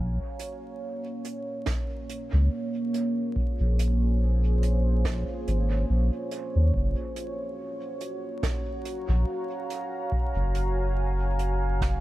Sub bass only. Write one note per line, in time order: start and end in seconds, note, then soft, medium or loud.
0.00 0.19 A#1 loud
2.33 2.49 C#2 medium
3.60 5.24 A#1 medium
5.47 5.85 G#1 medium
5.89 6.10 A#1 loud
6.55 6.72 D#2 medium
6.74 6.95 F#1 loud
9.08 9.25 A#1 loud
10.35 12.00 F#1 medium